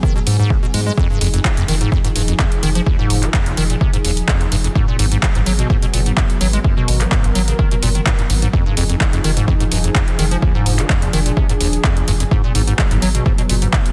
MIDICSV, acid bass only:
0, 0, Header, 1, 2, 480
1, 0, Start_track
1, 0, Tempo, 472441
1, 991, Time_signature, 4, 2, 24, 8
1, 14147, End_track
2, 0, Start_track
2, 0, Title_t, "Acid bass"
2, 0, Program_c, 0, 38
2, 30, Note_on_c, 0, 51, 84
2, 136, Note_off_c, 0, 51, 0
2, 158, Note_on_c, 0, 47, 99
2, 195, Note_off_c, 0, 47, 0
2, 271, Note_on_c, 0, 44, 76
2, 376, Note_off_c, 0, 44, 0
2, 398, Note_on_c, 0, 44, 97
2, 511, Note_on_c, 0, 32, 86
2, 526, Note_off_c, 0, 44, 0
2, 581, Note_off_c, 0, 32, 0
2, 638, Note_on_c, 0, 47, 99
2, 676, Note_off_c, 0, 47, 0
2, 751, Note_on_c, 0, 56, 79
2, 821, Note_off_c, 0, 56, 0
2, 878, Note_on_c, 0, 56, 101
2, 940, Note_off_c, 0, 56, 0
2, 990, Note_on_c, 0, 41, 97
2, 1096, Note_off_c, 0, 41, 0
2, 1118, Note_on_c, 0, 43, 76
2, 1211, Note_off_c, 0, 43, 0
2, 1230, Note_on_c, 0, 41, 107
2, 1301, Note_off_c, 0, 41, 0
2, 1357, Note_on_c, 0, 41, 95
2, 1420, Note_off_c, 0, 41, 0
2, 1598, Note_on_c, 0, 41, 97
2, 1660, Note_off_c, 0, 41, 0
2, 1710, Note_on_c, 0, 51, 100
2, 1781, Note_off_c, 0, 51, 0
2, 1837, Note_on_c, 0, 44, 97
2, 1931, Note_off_c, 0, 44, 0
2, 1950, Note_on_c, 0, 41, 98
2, 2021, Note_off_c, 0, 41, 0
2, 2078, Note_on_c, 0, 44, 107
2, 2115, Note_off_c, 0, 44, 0
2, 2191, Note_on_c, 0, 43, 77
2, 2261, Note_off_c, 0, 43, 0
2, 2318, Note_on_c, 0, 41, 75
2, 2380, Note_off_c, 0, 41, 0
2, 2430, Note_on_c, 0, 41, 86
2, 2501, Note_off_c, 0, 41, 0
2, 2670, Note_on_c, 0, 51, 103
2, 2741, Note_off_c, 0, 51, 0
2, 2798, Note_on_c, 0, 53, 96
2, 2860, Note_off_c, 0, 53, 0
2, 2911, Note_on_c, 0, 39, 74
2, 3016, Note_off_c, 0, 39, 0
2, 3038, Note_on_c, 0, 44, 98
2, 3278, Note_on_c, 0, 53, 97
2, 3293, Note_off_c, 0, 44, 0
2, 3340, Note_off_c, 0, 53, 0
2, 3391, Note_on_c, 0, 41, 81
2, 3518, Note_on_c, 0, 39, 104
2, 3533, Note_off_c, 0, 41, 0
2, 3580, Note_off_c, 0, 39, 0
2, 3631, Note_on_c, 0, 51, 100
2, 3701, Note_off_c, 0, 51, 0
2, 3758, Note_on_c, 0, 46, 73
2, 3820, Note_off_c, 0, 46, 0
2, 3871, Note_on_c, 0, 48, 83
2, 3976, Note_off_c, 0, 48, 0
2, 3998, Note_on_c, 0, 44, 105
2, 4035, Note_off_c, 0, 44, 0
2, 4111, Note_on_c, 0, 39, 78
2, 4181, Note_off_c, 0, 39, 0
2, 4351, Note_on_c, 0, 41, 88
2, 4478, Note_on_c, 0, 39, 101
2, 4493, Note_off_c, 0, 41, 0
2, 4540, Note_off_c, 0, 39, 0
2, 4590, Note_on_c, 0, 43, 103
2, 4633, Note_off_c, 0, 43, 0
2, 4718, Note_on_c, 0, 41, 74
2, 4755, Note_off_c, 0, 41, 0
2, 4831, Note_on_c, 0, 44, 97
2, 4936, Note_off_c, 0, 44, 0
2, 4958, Note_on_c, 0, 46, 78
2, 5051, Note_off_c, 0, 46, 0
2, 5071, Note_on_c, 0, 44, 105
2, 5141, Note_off_c, 0, 44, 0
2, 5198, Note_on_c, 0, 44, 96
2, 5260, Note_off_c, 0, 44, 0
2, 5438, Note_on_c, 0, 44, 99
2, 5500, Note_off_c, 0, 44, 0
2, 5551, Note_on_c, 0, 54, 101
2, 5621, Note_off_c, 0, 54, 0
2, 5678, Note_on_c, 0, 47, 96
2, 5771, Note_off_c, 0, 47, 0
2, 5790, Note_on_c, 0, 44, 94
2, 5861, Note_off_c, 0, 44, 0
2, 5918, Note_on_c, 0, 47, 102
2, 5955, Note_off_c, 0, 47, 0
2, 6031, Note_on_c, 0, 46, 77
2, 6101, Note_off_c, 0, 46, 0
2, 6158, Note_on_c, 0, 44, 74
2, 6220, Note_off_c, 0, 44, 0
2, 6271, Note_on_c, 0, 44, 89
2, 6341, Note_off_c, 0, 44, 0
2, 6511, Note_on_c, 0, 54, 100
2, 6581, Note_off_c, 0, 54, 0
2, 6638, Note_on_c, 0, 56, 102
2, 6700, Note_off_c, 0, 56, 0
2, 6752, Note_on_c, 0, 42, 80
2, 6856, Note_off_c, 0, 42, 0
2, 6879, Note_on_c, 0, 47, 102
2, 7118, Note_on_c, 0, 56, 95
2, 7133, Note_off_c, 0, 47, 0
2, 7180, Note_off_c, 0, 56, 0
2, 7231, Note_on_c, 0, 44, 79
2, 7358, Note_on_c, 0, 42, 101
2, 7374, Note_off_c, 0, 44, 0
2, 7420, Note_off_c, 0, 42, 0
2, 7471, Note_on_c, 0, 54, 100
2, 7541, Note_off_c, 0, 54, 0
2, 7599, Note_on_c, 0, 49, 77
2, 7661, Note_off_c, 0, 49, 0
2, 7711, Note_on_c, 0, 51, 83
2, 7816, Note_off_c, 0, 51, 0
2, 7838, Note_on_c, 0, 47, 106
2, 7876, Note_off_c, 0, 47, 0
2, 7951, Note_on_c, 0, 46, 98
2, 8021, Note_off_c, 0, 46, 0
2, 8078, Note_on_c, 0, 51, 72
2, 8140, Note_off_c, 0, 51, 0
2, 8190, Note_on_c, 0, 44, 84
2, 8261, Note_off_c, 0, 44, 0
2, 8318, Note_on_c, 0, 44, 77
2, 8355, Note_off_c, 0, 44, 0
2, 8431, Note_on_c, 0, 44, 79
2, 8473, Note_off_c, 0, 44, 0
2, 8558, Note_on_c, 0, 44, 105
2, 8620, Note_off_c, 0, 44, 0
2, 8671, Note_on_c, 0, 41, 96
2, 8776, Note_off_c, 0, 41, 0
2, 8798, Note_on_c, 0, 43, 78
2, 8891, Note_off_c, 0, 43, 0
2, 8910, Note_on_c, 0, 41, 106
2, 8981, Note_off_c, 0, 41, 0
2, 9037, Note_on_c, 0, 41, 94
2, 9100, Note_off_c, 0, 41, 0
2, 9278, Note_on_c, 0, 41, 99
2, 9340, Note_off_c, 0, 41, 0
2, 9391, Note_on_c, 0, 51, 102
2, 9461, Note_off_c, 0, 51, 0
2, 9518, Note_on_c, 0, 44, 99
2, 9611, Note_off_c, 0, 44, 0
2, 9631, Note_on_c, 0, 41, 100
2, 9701, Note_off_c, 0, 41, 0
2, 9758, Note_on_c, 0, 44, 106
2, 9795, Note_off_c, 0, 44, 0
2, 9871, Note_on_c, 0, 43, 77
2, 9941, Note_off_c, 0, 43, 0
2, 9998, Note_on_c, 0, 41, 74
2, 10060, Note_off_c, 0, 41, 0
2, 10111, Note_on_c, 0, 41, 87
2, 10181, Note_off_c, 0, 41, 0
2, 10351, Note_on_c, 0, 51, 106
2, 10421, Note_off_c, 0, 51, 0
2, 10478, Note_on_c, 0, 53, 104
2, 10540, Note_off_c, 0, 53, 0
2, 10591, Note_on_c, 0, 39, 75
2, 10696, Note_off_c, 0, 39, 0
2, 10719, Note_on_c, 0, 44, 101
2, 10959, Note_on_c, 0, 53, 101
2, 10974, Note_off_c, 0, 44, 0
2, 11021, Note_off_c, 0, 53, 0
2, 11072, Note_on_c, 0, 41, 81
2, 11199, Note_on_c, 0, 39, 101
2, 11214, Note_off_c, 0, 41, 0
2, 11261, Note_off_c, 0, 39, 0
2, 11312, Note_on_c, 0, 51, 100
2, 11381, Note_off_c, 0, 51, 0
2, 11439, Note_on_c, 0, 46, 76
2, 11501, Note_off_c, 0, 46, 0
2, 11552, Note_on_c, 0, 48, 79
2, 11656, Note_off_c, 0, 48, 0
2, 11678, Note_on_c, 0, 44, 104
2, 11716, Note_off_c, 0, 44, 0
2, 11792, Note_on_c, 0, 39, 77
2, 11861, Note_off_c, 0, 39, 0
2, 12031, Note_on_c, 0, 41, 86
2, 12158, Note_on_c, 0, 39, 99
2, 12173, Note_off_c, 0, 41, 0
2, 12220, Note_off_c, 0, 39, 0
2, 12271, Note_on_c, 0, 43, 103
2, 12313, Note_off_c, 0, 43, 0
2, 12398, Note_on_c, 0, 41, 78
2, 12435, Note_off_c, 0, 41, 0
2, 12511, Note_on_c, 0, 44, 93
2, 12616, Note_off_c, 0, 44, 0
2, 12638, Note_on_c, 0, 46, 81
2, 12731, Note_off_c, 0, 46, 0
2, 12750, Note_on_c, 0, 44, 107
2, 12821, Note_off_c, 0, 44, 0
2, 12878, Note_on_c, 0, 44, 98
2, 12940, Note_off_c, 0, 44, 0
2, 13118, Note_on_c, 0, 44, 100
2, 13180, Note_off_c, 0, 44, 0
2, 13231, Note_on_c, 0, 54, 102
2, 13301, Note_off_c, 0, 54, 0
2, 13358, Note_on_c, 0, 47, 101
2, 13451, Note_off_c, 0, 47, 0
2, 13471, Note_on_c, 0, 44, 97
2, 13541, Note_off_c, 0, 44, 0
2, 13598, Note_on_c, 0, 47, 108
2, 13635, Note_off_c, 0, 47, 0
2, 13711, Note_on_c, 0, 46, 77
2, 13781, Note_off_c, 0, 46, 0
2, 13838, Note_on_c, 0, 44, 71
2, 13900, Note_off_c, 0, 44, 0
2, 13951, Note_on_c, 0, 44, 89
2, 14021, Note_off_c, 0, 44, 0
2, 14147, End_track
0, 0, End_of_file